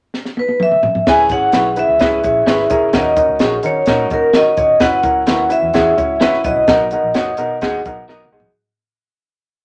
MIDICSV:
0, 0, Header, 1, 6, 480
1, 0, Start_track
1, 0, Tempo, 468019
1, 1099, Time_signature, 4, 2, 24, 8
1, 9894, End_track
2, 0, Start_track
2, 0, Title_t, "Vibraphone"
2, 0, Program_c, 0, 11
2, 403, Note_on_c, 0, 71, 74
2, 638, Note_off_c, 0, 71, 0
2, 642, Note_on_c, 0, 76, 91
2, 1113, Note_on_c, 0, 80, 86
2, 1125, Note_off_c, 0, 76, 0
2, 1330, Note_off_c, 0, 80, 0
2, 1351, Note_on_c, 0, 78, 92
2, 1838, Note_on_c, 0, 76, 99
2, 1840, Note_off_c, 0, 78, 0
2, 3031, Note_on_c, 0, 75, 81
2, 3064, Note_off_c, 0, 76, 0
2, 3471, Note_off_c, 0, 75, 0
2, 3752, Note_on_c, 0, 73, 98
2, 4191, Note_off_c, 0, 73, 0
2, 4242, Note_on_c, 0, 70, 90
2, 4475, Note_off_c, 0, 70, 0
2, 4477, Note_on_c, 0, 75, 102
2, 4944, Note_on_c, 0, 78, 96
2, 4959, Note_off_c, 0, 75, 0
2, 5660, Note_on_c, 0, 76, 105
2, 5680, Note_off_c, 0, 78, 0
2, 6615, Note_on_c, 0, 75, 82
2, 6644, Note_off_c, 0, 76, 0
2, 8254, Note_off_c, 0, 75, 0
2, 9894, End_track
3, 0, Start_track
3, 0, Title_t, "Clean electric guitar"
3, 0, Program_c, 1, 27
3, 1571, Note_on_c, 1, 64, 79
3, 1576, Note_on_c, 1, 71, 94
3, 1582, Note_on_c, 1, 73, 95
3, 1725, Note_off_c, 1, 64, 0
3, 1727, Note_off_c, 1, 71, 0
3, 1730, Note_off_c, 1, 73, 0
3, 2528, Note_on_c, 1, 64, 73
3, 2536, Note_on_c, 1, 71, 78
3, 2541, Note_on_c, 1, 73, 74
3, 2683, Note_off_c, 1, 64, 0
3, 2687, Note_off_c, 1, 71, 0
3, 2689, Note_off_c, 1, 73, 0
3, 3489, Note_on_c, 1, 66, 78
3, 3496, Note_on_c, 1, 70, 95
3, 3500, Note_on_c, 1, 73, 97
3, 3642, Note_off_c, 1, 66, 0
3, 3646, Note_off_c, 1, 70, 0
3, 3648, Note_off_c, 1, 73, 0
3, 4445, Note_on_c, 1, 66, 82
3, 4453, Note_on_c, 1, 70, 82
3, 4459, Note_on_c, 1, 73, 83
3, 4600, Note_off_c, 1, 66, 0
3, 4603, Note_off_c, 1, 70, 0
3, 4606, Note_off_c, 1, 73, 0
3, 5402, Note_on_c, 1, 64, 98
3, 5407, Note_on_c, 1, 71, 87
3, 5412, Note_on_c, 1, 73, 96
3, 5557, Note_off_c, 1, 64, 0
3, 5559, Note_off_c, 1, 71, 0
3, 5562, Note_off_c, 1, 73, 0
3, 6358, Note_on_c, 1, 64, 78
3, 6363, Note_on_c, 1, 71, 78
3, 6368, Note_on_c, 1, 73, 91
3, 6515, Note_off_c, 1, 64, 0
3, 6517, Note_off_c, 1, 71, 0
3, 6520, Note_off_c, 1, 73, 0
3, 7327, Note_on_c, 1, 66, 88
3, 7333, Note_on_c, 1, 70, 89
3, 7338, Note_on_c, 1, 75, 97
3, 7479, Note_off_c, 1, 66, 0
3, 7482, Note_off_c, 1, 70, 0
3, 7484, Note_off_c, 1, 75, 0
3, 8288, Note_on_c, 1, 66, 67
3, 8297, Note_on_c, 1, 70, 86
3, 8300, Note_on_c, 1, 75, 76
3, 8440, Note_off_c, 1, 66, 0
3, 8445, Note_off_c, 1, 70, 0
3, 8447, Note_off_c, 1, 75, 0
3, 9894, End_track
4, 0, Start_track
4, 0, Title_t, "Upright piano"
4, 0, Program_c, 2, 0
4, 1103, Note_on_c, 2, 61, 85
4, 1103, Note_on_c, 2, 64, 77
4, 1103, Note_on_c, 2, 68, 76
4, 1106, Note_on_c, 2, 71, 89
4, 1283, Note_off_c, 2, 61, 0
4, 1283, Note_off_c, 2, 64, 0
4, 1283, Note_off_c, 2, 68, 0
4, 1284, Note_off_c, 2, 71, 0
4, 1341, Note_on_c, 2, 61, 74
4, 1349, Note_on_c, 2, 64, 62
4, 1349, Note_on_c, 2, 68, 64
4, 1351, Note_on_c, 2, 73, 81
4, 1522, Note_off_c, 2, 61, 0
4, 1525, Note_off_c, 2, 68, 0
4, 1526, Note_off_c, 2, 64, 0
4, 1527, Note_off_c, 2, 73, 0
4, 1580, Note_on_c, 2, 61, 61
4, 1583, Note_on_c, 2, 64, 60
4, 1584, Note_on_c, 2, 68, 58
4, 1584, Note_on_c, 2, 71, 69
4, 1761, Note_off_c, 2, 61, 0
4, 1763, Note_off_c, 2, 64, 0
4, 1763, Note_off_c, 2, 68, 0
4, 1763, Note_off_c, 2, 71, 0
4, 1808, Note_on_c, 2, 61, 58
4, 1811, Note_on_c, 2, 64, 57
4, 1815, Note_on_c, 2, 68, 54
4, 1816, Note_on_c, 2, 71, 70
4, 1995, Note_off_c, 2, 61, 0
4, 1996, Note_off_c, 2, 64, 0
4, 1999, Note_off_c, 2, 68, 0
4, 1999, Note_off_c, 2, 71, 0
4, 2053, Note_on_c, 2, 64, 84
4, 2055, Note_on_c, 2, 61, 89
4, 2057, Note_on_c, 2, 68, 78
4, 2058, Note_on_c, 2, 71, 88
4, 2238, Note_off_c, 2, 61, 0
4, 2238, Note_off_c, 2, 64, 0
4, 2239, Note_off_c, 2, 68, 0
4, 2240, Note_off_c, 2, 71, 0
4, 2283, Note_on_c, 2, 61, 68
4, 2290, Note_on_c, 2, 64, 59
4, 2291, Note_on_c, 2, 68, 61
4, 2294, Note_on_c, 2, 73, 79
4, 2472, Note_off_c, 2, 61, 0
4, 2476, Note_off_c, 2, 64, 0
4, 2476, Note_off_c, 2, 68, 0
4, 2478, Note_off_c, 2, 73, 0
4, 2526, Note_on_c, 2, 61, 79
4, 2535, Note_on_c, 2, 64, 76
4, 2537, Note_on_c, 2, 68, 78
4, 2538, Note_on_c, 2, 71, 80
4, 2714, Note_off_c, 2, 61, 0
4, 2718, Note_off_c, 2, 64, 0
4, 2719, Note_off_c, 2, 68, 0
4, 2720, Note_off_c, 2, 71, 0
4, 2768, Note_on_c, 2, 61, 85
4, 2770, Note_on_c, 2, 64, 70
4, 2774, Note_on_c, 2, 68, 76
4, 2778, Note_on_c, 2, 70, 89
4, 2954, Note_off_c, 2, 61, 0
4, 2955, Note_off_c, 2, 64, 0
4, 2957, Note_off_c, 2, 68, 0
4, 2959, Note_off_c, 2, 70, 0
4, 3007, Note_on_c, 2, 63, 80
4, 3008, Note_on_c, 2, 61, 87
4, 3012, Note_on_c, 2, 70, 100
4, 3013, Note_on_c, 2, 66, 83
4, 3194, Note_off_c, 2, 61, 0
4, 3194, Note_off_c, 2, 63, 0
4, 3196, Note_off_c, 2, 70, 0
4, 3197, Note_off_c, 2, 66, 0
4, 3243, Note_on_c, 2, 61, 70
4, 3244, Note_on_c, 2, 63, 66
4, 3248, Note_on_c, 2, 66, 62
4, 3252, Note_on_c, 2, 70, 73
4, 3432, Note_off_c, 2, 61, 0
4, 3432, Note_off_c, 2, 63, 0
4, 3434, Note_off_c, 2, 66, 0
4, 3436, Note_off_c, 2, 70, 0
4, 3483, Note_on_c, 2, 63, 61
4, 3485, Note_on_c, 2, 61, 63
4, 3491, Note_on_c, 2, 66, 62
4, 3492, Note_on_c, 2, 68, 80
4, 3671, Note_off_c, 2, 63, 0
4, 3672, Note_off_c, 2, 61, 0
4, 3675, Note_off_c, 2, 66, 0
4, 3676, Note_off_c, 2, 68, 0
4, 3724, Note_on_c, 2, 61, 62
4, 3726, Note_on_c, 2, 63, 61
4, 3730, Note_on_c, 2, 66, 57
4, 3733, Note_on_c, 2, 70, 71
4, 3911, Note_off_c, 2, 61, 0
4, 3912, Note_off_c, 2, 63, 0
4, 3914, Note_off_c, 2, 66, 0
4, 3916, Note_off_c, 2, 70, 0
4, 3968, Note_on_c, 2, 61, 93
4, 3971, Note_on_c, 2, 63, 87
4, 3974, Note_on_c, 2, 66, 80
4, 3978, Note_on_c, 2, 70, 103
4, 4153, Note_off_c, 2, 61, 0
4, 4155, Note_off_c, 2, 63, 0
4, 4156, Note_off_c, 2, 66, 0
4, 4158, Note_off_c, 2, 70, 0
4, 4210, Note_on_c, 2, 61, 65
4, 4213, Note_on_c, 2, 63, 71
4, 4219, Note_on_c, 2, 66, 66
4, 4223, Note_on_c, 2, 70, 76
4, 4394, Note_off_c, 2, 61, 0
4, 4396, Note_off_c, 2, 63, 0
4, 4398, Note_off_c, 2, 66, 0
4, 4400, Note_off_c, 2, 70, 0
4, 4447, Note_on_c, 2, 61, 73
4, 4454, Note_on_c, 2, 63, 57
4, 4456, Note_on_c, 2, 66, 63
4, 4463, Note_on_c, 2, 70, 76
4, 4632, Note_off_c, 2, 61, 0
4, 4636, Note_off_c, 2, 63, 0
4, 4636, Note_off_c, 2, 66, 0
4, 4640, Note_off_c, 2, 70, 0
4, 4683, Note_on_c, 2, 61, 66
4, 4686, Note_on_c, 2, 63, 58
4, 4692, Note_on_c, 2, 66, 63
4, 4692, Note_on_c, 2, 73, 80
4, 4870, Note_off_c, 2, 61, 0
4, 4871, Note_off_c, 2, 63, 0
4, 4874, Note_off_c, 2, 66, 0
4, 4874, Note_off_c, 2, 73, 0
4, 4921, Note_on_c, 2, 61, 86
4, 4925, Note_on_c, 2, 66, 83
4, 4927, Note_on_c, 2, 64, 75
4, 4928, Note_on_c, 2, 71, 93
4, 5109, Note_off_c, 2, 61, 0
4, 5111, Note_off_c, 2, 66, 0
4, 5112, Note_off_c, 2, 64, 0
4, 5112, Note_off_c, 2, 71, 0
4, 5158, Note_on_c, 2, 61, 66
4, 5163, Note_on_c, 2, 64, 72
4, 5165, Note_on_c, 2, 66, 62
4, 5166, Note_on_c, 2, 70, 81
4, 5347, Note_off_c, 2, 61, 0
4, 5349, Note_off_c, 2, 64, 0
4, 5351, Note_off_c, 2, 66, 0
4, 5351, Note_off_c, 2, 70, 0
4, 5399, Note_on_c, 2, 61, 64
4, 5399, Note_on_c, 2, 64, 68
4, 5402, Note_on_c, 2, 66, 63
4, 5411, Note_on_c, 2, 70, 76
4, 5587, Note_off_c, 2, 61, 0
4, 5587, Note_off_c, 2, 64, 0
4, 5589, Note_off_c, 2, 66, 0
4, 5593, Note_off_c, 2, 70, 0
4, 5629, Note_on_c, 2, 61, 65
4, 5633, Note_on_c, 2, 64, 61
4, 5635, Note_on_c, 2, 66, 65
4, 5639, Note_on_c, 2, 71, 69
4, 5822, Note_off_c, 2, 61, 0
4, 5824, Note_off_c, 2, 64, 0
4, 5825, Note_off_c, 2, 66, 0
4, 5827, Note_off_c, 2, 71, 0
4, 5887, Note_on_c, 2, 61, 94
4, 5888, Note_on_c, 2, 64, 94
4, 5889, Note_on_c, 2, 66, 94
4, 5895, Note_on_c, 2, 68, 96
4, 6071, Note_off_c, 2, 61, 0
4, 6071, Note_off_c, 2, 64, 0
4, 6072, Note_off_c, 2, 66, 0
4, 6075, Note_off_c, 2, 68, 0
4, 6125, Note_on_c, 2, 61, 77
4, 6126, Note_on_c, 2, 64, 70
4, 6128, Note_on_c, 2, 66, 60
4, 6129, Note_on_c, 2, 73, 73
4, 6310, Note_off_c, 2, 61, 0
4, 6310, Note_off_c, 2, 64, 0
4, 6312, Note_off_c, 2, 66, 0
4, 6312, Note_off_c, 2, 73, 0
4, 6373, Note_on_c, 2, 64, 85
4, 6375, Note_on_c, 2, 61, 85
4, 6379, Note_on_c, 2, 66, 80
4, 6381, Note_on_c, 2, 71, 91
4, 6553, Note_off_c, 2, 64, 0
4, 6555, Note_off_c, 2, 61, 0
4, 6557, Note_off_c, 2, 66, 0
4, 6558, Note_off_c, 2, 71, 0
4, 6610, Note_on_c, 2, 61, 71
4, 6616, Note_on_c, 2, 64, 65
4, 6617, Note_on_c, 2, 66, 64
4, 6621, Note_on_c, 2, 71, 74
4, 6792, Note_off_c, 2, 61, 0
4, 6795, Note_off_c, 2, 64, 0
4, 6796, Note_off_c, 2, 66, 0
4, 6798, Note_off_c, 2, 71, 0
4, 6854, Note_on_c, 2, 59, 85
4, 6857, Note_on_c, 2, 63, 82
4, 6859, Note_on_c, 2, 70, 97
4, 6862, Note_on_c, 2, 66, 82
4, 7034, Note_off_c, 2, 59, 0
4, 7036, Note_off_c, 2, 63, 0
4, 7037, Note_off_c, 2, 70, 0
4, 7038, Note_off_c, 2, 66, 0
4, 7093, Note_on_c, 2, 59, 70
4, 7098, Note_on_c, 2, 63, 63
4, 7099, Note_on_c, 2, 66, 64
4, 7108, Note_on_c, 2, 70, 83
4, 7274, Note_off_c, 2, 59, 0
4, 7276, Note_off_c, 2, 63, 0
4, 7277, Note_off_c, 2, 66, 0
4, 7281, Note_off_c, 2, 70, 0
4, 7328, Note_on_c, 2, 59, 83
4, 7332, Note_on_c, 2, 66, 69
4, 7334, Note_on_c, 2, 63, 74
4, 7338, Note_on_c, 2, 73, 89
4, 7511, Note_off_c, 2, 59, 0
4, 7514, Note_off_c, 2, 63, 0
4, 7514, Note_off_c, 2, 66, 0
4, 7516, Note_off_c, 2, 73, 0
4, 7561, Note_on_c, 2, 59, 75
4, 7568, Note_on_c, 2, 63, 71
4, 7571, Note_on_c, 2, 66, 69
4, 7573, Note_on_c, 2, 70, 93
4, 7748, Note_off_c, 2, 59, 0
4, 7752, Note_off_c, 2, 63, 0
4, 7753, Note_off_c, 2, 66, 0
4, 7754, Note_off_c, 2, 70, 0
4, 7813, Note_on_c, 2, 63, 101
4, 7816, Note_on_c, 2, 59, 108
4, 7819, Note_on_c, 2, 66, 98
4, 7824, Note_on_c, 2, 68, 118
4, 7994, Note_off_c, 2, 63, 0
4, 7996, Note_off_c, 2, 59, 0
4, 7997, Note_off_c, 2, 66, 0
4, 8000, Note_off_c, 2, 68, 0
4, 8057, Note_on_c, 2, 59, 85
4, 8059, Note_on_c, 2, 63, 78
4, 8060, Note_on_c, 2, 66, 71
4, 8065, Note_on_c, 2, 70, 89
4, 8236, Note_off_c, 2, 59, 0
4, 8238, Note_off_c, 2, 63, 0
4, 8238, Note_off_c, 2, 66, 0
4, 8241, Note_off_c, 2, 70, 0
4, 8291, Note_on_c, 2, 63, 68
4, 8293, Note_on_c, 2, 59, 88
4, 8297, Note_on_c, 2, 66, 83
4, 8298, Note_on_c, 2, 70, 95
4, 8474, Note_off_c, 2, 63, 0
4, 8475, Note_off_c, 2, 59, 0
4, 8477, Note_off_c, 2, 66, 0
4, 8477, Note_off_c, 2, 70, 0
4, 8537, Note_on_c, 2, 59, 82
4, 8537, Note_on_c, 2, 63, 78
4, 8537, Note_on_c, 2, 66, 73
4, 8540, Note_on_c, 2, 68, 83
4, 8717, Note_off_c, 2, 59, 0
4, 8717, Note_off_c, 2, 63, 0
4, 8717, Note_off_c, 2, 66, 0
4, 8719, Note_off_c, 2, 68, 0
4, 9894, End_track
5, 0, Start_track
5, 0, Title_t, "Fingered electric bass"
5, 0, Program_c, 3, 33
5, 1099, Note_on_c, 3, 37, 102
5, 1283, Note_off_c, 3, 37, 0
5, 1331, Note_on_c, 3, 32, 77
5, 1518, Note_off_c, 3, 32, 0
5, 1585, Note_on_c, 3, 35, 87
5, 1858, Note_off_c, 3, 35, 0
5, 1938, Note_on_c, 3, 37, 74
5, 2030, Note_off_c, 3, 37, 0
5, 2061, Note_on_c, 3, 37, 96
5, 2244, Note_off_c, 3, 37, 0
5, 2301, Note_on_c, 3, 34, 90
5, 2484, Note_off_c, 3, 34, 0
5, 2533, Note_on_c, 3, 32, 91
5, 2719, Note_off_c, 3, 32, 0
5, 2779, Note_on_c, 3, 49, 89
5, 2962, Note_off_c, 3, 49, 0
5, 3012, Note_on_c, 3, 39, 81
5, 3290, Note_off_c, 3, 39, 0
5, 3369, Note_on_c, 3, 37, 64
5, 3464, Note_off_c, 3, 37, 0
5, 3493, Note_on_c, 3, 34, 77
5, 3678, Note_off_c, 3, 34, 0
5, 3733, Note_on_c, 3, 51, 78
5, 3918, Note_off_c, 3, 51, 0
5, 3975, Note_on_c, 3, 46, 105
5, 4215, Note_off_c, 3, 46, 0
5, 4215, Note_on_c, 3, 39, 86
5, 4582, Note_off_c, 3, 39, 0
5, 4692, Note_on_c, 3, 31, 90
5, 4876, Note_off_c, 3, 31, 0
5, 4932, Note_on_c, 3, 30, 96
5, 5116, Note_off_c, 3, 30, 0
5, 5164, Note_on_c, 3, 37, 78
5, 5351, Note_off_c, 3, 37, 0
5, 5411, Note_on_c, 3, 39, 76
5, 5687, Note_off_c, 3, 39, 0
5, 5766, Note_on_c, 3, 40, 80
5, 5860, Note_off_c, 3, 40, 0
5, 5890, Note_on_c, 3, 40, 109
5, 6075, Note_off_c, 3, 40, 0
5, 6135, Note_on_c, 3, 37, 83
5, 6410, Note_off_c, 3, 37, 0
5, 6609, Note_on_c, 3, 35, 98
5, 6702, Note_off_c, 3, 35, 0
5, 6730, Note_on_c, 3, 36, 77
5, 6823, Note_off_c, 3, 36, 0
5, 6851, Note_on_c, 3, 35, 96
5, 7127, Note_off_c, 3, 35, 0
5, 7211, Note_on_c, 3, 34, 80
5, 7303, Note_off_c, 3, 34, 0
5, 7337, Note_on_c, 3, 30, 72
5, 7519, Note_off_c, 3, 30, 0
5, 7573, Note_on_c, 3, 47, 88
5, 7813, Note_on_c, 3, 39, 104
5, 7829, Note_off_c, 3, 47, 0
5, 7997, Note_off_c, 3, 39, 0
5, 8059, Note_on_c, 3, 35, 88
5, 8425, Note_off_c, 3, 35, 0
5, 8532, Note_on_c, 3, 36, 83
5, 8717, Note_off_c, 3, 36, 0
5, 9894, End_track
6, 0, Start_track
6, 0, Title_t, "Drums"
6, 142, Note_on_c, 9, 38, 48
6, 245, Note_off_c, 9, 38, 0
6, 261, Note_on_c, 9, 38, 41
6, 364, Note_off_c, 9, 38, 0
6, 380, Note_on_c, 9, 48, 61
6, 482, Note_off_c, 9, 48, 0
6, 497, Note_on_c, 9, 48, 60
6, 600, Note_off_c, 9, 48, 0
6, 613, Note_on_c, 9, 47, 82
6, 715, Note_off_c, 9, 47, 0
6, 734, Note_on_c, 9, 45, 63
6, 837, Note_off_c, 9, 45, 0
6, 850, Note_on_c, 9, 43, 95
6, 953, Note_off_c, 9, 43, 0
6, 975, Note_on_c, 9, 43, 79
6, 1078, Note_off_c, 9, 43, 0
6, 1092, Note_on_c, 9, 49, 76
6, 1096, Note_on_c, 9, 38, 102
6, 1097, Note_on_c, 9, 36, 98
6, 1194, Note_off_c, 9, 49, 0
6, 1198, Note_off_c, 9, 38, 0
6, 1200, Note_off_c, 9, 36, 0
6, 1325, Note_on_c, 9, 42, 72
6, 1331, Note_on_c, 9, 36, 73
6, 1428, Note_off_c, 9, 42, 0
6, 1433, Note_off_c, 9, 36, 0
6, 1562, Note_on_c, 9, 42, 87
6, 1570, Note_on_c, 9, 38, 93
6, 1665, Note_off_c, 9, 42, 0
6, 1673, Note_off_c, 9, 38, 0
6, 1806, Note_on_c, 9, 42, 65
6, 1909, Note_off_c, 9, 42, 0
6, 2045, Note_on_c, 9, 42, 64
6, 2059, Note_on_c, 9, 36, 75
6, 2061, Note_on_c, 9, 38, 89
6, 2148, Note_off_c, 9, 42, 0
6, 2161, Note_off_c, 9, 36, 0
6, 2164, Note_off_c, 9, 38, 0
6, 2293, Note_on_c, 9, 42, 54
6, 2302, Note_on_c, 9, 36, 75
6, 2395, Note_off_c, 9, 42, 0
6, 2404, Note_off_c, 9, 36, 0
6, 2535, Note_on_c, 9, 38, 100
6, 2539, Note_on_c, 9, 42, 73
6, 2638, Note_off_c, 9, 38, 0
6, 2642, Note_off_c, 9, 42, 0
6, 2659, Note_on_c, 9, 38, 32
6, 2762, Note_off_c, 9, 38, 0
6, 2767, Note_on_c, 9, 42, 66
6, 2777, Note_on_c, 9, 36, 84
6, 2870, Note_off_c, 9, 42, 0
6, 2879, Note_off_c, 9, 36, 0
6, 3005, Note_on_c, 9, 42, 76
6, 3009, Note_on_c, 9, 38, 102
6, 3014, Note_on_c, 9, 36, 93
6, 3108, Note_off_c, 9, 42, 0
6, 3112, Note_off_c, 9, 38, 0
6, 3117, Note_off_c, 9, 36, 0
6, 3246, Note_on_c, 9, 42, 67
6, 3248, Note_on_c, 9, 36, 85
6, 3348, Note_off_c, 9, 42, 0
6, 3350, Note_off_c, 9, 36, 0
6, 3479, Note_on_c, 9, 42, 81
6, 3488, Note_on_c, 9, 38, 101
6, 3582, Note_off_c, 9, 42, 0
6, 3590, Note_off_c, 9, 38, 0
6, 3722, Note_on_c, 9, 42, 72
6, 3824, Note_off_c, 9, 42, 0
6, 3957, Note_on_c, 9, 42, 66
6, 3972, Note_on_c, 9, 38, 93
6, 3974, Note_on_c, 9, 36, 74
6, 4059, Note_off_c, 9, 42, 0
6, 4075, Note_off_c, 9, 38, 0
6, 4077, Note_off_c, 9, 36, 0
6, 4208, Note_on_c, 9, 42, 52
6, 4217, Note_on_c, 9, 36, 77
6, 4310, Note_off_c, 9, 42, 0
6, 4320, Note_off_c, 9, 36, 0
6, 4445, Note_on_c, 9, 38, 108
6, 4450, Note_on_c, 9, 42, 78
6, 4548, Note_off_c, 9, 38, 0
6, 4552, Note_off_c, 9, 42, 0
6, 4686, Note_on_c, 9, 42, 75
6, 4692, Note_on_c, 9, 36, 90
6, 4789, Note_off_c, 9, 42, 0
6, 4794, Note_off_c, 9, 36, 0
6, 4922, Note_on_c, 9, 42, 67
6, 4926, Note_on_c, 9, 38, 110
6, 4930, Note_on_c, 9, 36, 110
6, 5025, Note_off_c, 9, 42, 0
6, 5029, Note_off_c, 9, 38, 0
6, 5033, Note_off_c, 9, 36, 0
6, 5160, Note_on_c, 9, 42, 76
6, 5164, Note_on_c, 9, 36, 81
6, 5263, Note_off_c, 9, 42, 0
6, 5267, Note_off_c, 9, 36, 0
6, 5402, Note_on_c, 9, 42, 85
6, 5410, Note_on_c, 9, 38, 100
6, 5504, Note_off_c, 9, 42, 0
6, 5512, Note_off_c, 9, 38, 0
6, 5641, Note_on_c, 9, 42, 79
6, 5743, Note_off_c, 9, 42, 0
6, 5882, Note_on_c, 9, 42, 68
6, 5892, Note_on_c, 9, 36, 81
6, 5898, Note_on_c, 9, 38, 96
6, 5985, Note_off_c, 9, 42, 0
6, 5994, Note_off_c, 9, 36, 0
6, 6000, Note_off_c, 9, 38, 0
6, 6131, Note_on_c, 9, 42, 48
6, 6136, Note_on_c, 9, 36, 81
6, 6234, Note_off_c, 9, 42, 0
6, 6238, Note_off_c, 9, 36, 0
6, 6368, Note_on_c, 9, 38, 103
6, 6372, Note_on_c, 9, 42, 81
6, 6471, Note_off_c, 9, 38, 0
6, 6475, Note_off_c, 9, 42, 0
6, 6495, Note_on_c, 9, 38, 34
6, 6597, Note_off_c, 9, 38, 0
6, 6607, Note_on_c, 9, 42, 80
6, 6611, Note_on_c, 9, 36, 91
6, 6710, Note_off_c, 9, 42, 0
6, 6713, Note_off_c, 9, 36, 0
6, 6846, Note_on_c, 9, 42, 75
6, 6849, Note_on_c, 9, 36, 106
6, 6850, Note_on_c, 9, 38, 106
6, 6949, Note_off_c, 9, 42, 0
6, 6952, Note_off_c, 9, 36, 0
6, 6953, Note_off_c, 9, 38, 0
6, 7085, Note_on_c, 9, 42, 71
6, 7187, Note_off_c, 9, 42, 0
6, 7326, Note_on_c, 9, 42, 86
6, 7334, Note_on_c, 9, 38, 93
6, 7429, Note_off_c, 9, 42, 0
6, 7437, Note_off_c, 9, 38, 0
6, 7559, Note_on_c, 9, 42, 75
6, 7661, Note_off_c, 9, 42, 0
6, 7808, Note_on_c, 9, 42, 73
6, 7815, Note_on_c, 9, 36, 73
6, 7824, Note_on_c, 9, 38, 100
6, 7911, Note_off_c, 9, 42, 0
6, 7917, Note_off_c, 9, 36, 0
6, 7927, Note_off_c, 9, 38, 0
6, 8054, Note_on_c, 9, 42, 56
6, 8059, Note_on_c, 9, 36, 88
6, 8157, Note_off_c, 9, 42, 0
6, 8162, Note_off_c, 9, 36, 0
6, 8299, Note_on_c, 9, 38, 45
6, 8402, Note_off_c, 9, 38, 0
6, 8459, Note_on_c, 9, 45, 63
6, 8561, Note_off_c, 9, 45, 0
6, 8615, Note_on_c, 9, 43, 92
6, 8718, Note_off_c, 9, 43, 0
6, 9894, End_track
0, 0, End_of_file